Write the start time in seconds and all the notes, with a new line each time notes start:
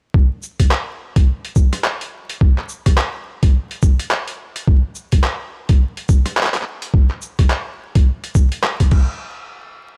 0.14 kick
0.43 shaker
0.59 kick, closed hi-hat
0.71 clap
1.16 kick, closed hi-hat
1.45 closed hi-hat
1.56 kick, shaker
1.73 cross-stick, closed hi-hat
1.84 clap
2.01 closed hi-hat
2.29 closed hi-hat
2.41 kick
2.58 clap
2.69 shaker
2.86 kick, cross-stick, closed hi-hat
2.97 clap
3.43 kick, closed hi-hat
3.71 closed hi-hat
3.82 kick, shaker
3.99 closed hi-hat
4.11 clap
4.28 closed hi-hat
4.56 closed hi-hat
4.68 kick
4.95 shaker
5.12 kick, closed hi-hat
5.24 clap
5.69 kick, closed hi-hat
5.97 closed hi-hat
6.09 kick, shaker
6.26 cross-stick, closed hi-hat
6.37 clap
6.43 clap
6.46 clap
6.54 clap, closed hi-hat
6.56 clap
6.62 clap
6.82 closed hi-hat
6.94 kick
7.10 clap
7.22 shaker
7.39 kick, cross-stick, closed hi-hat
7.50 clap
7.95 kick, closed hi-hat
8.24 closed hi-hat
8.35 kick, shaker
8.52 closed hi-hat
8.63 cross-stick, clap
8.80 kick, closed hi-hat
8.91 kick, crash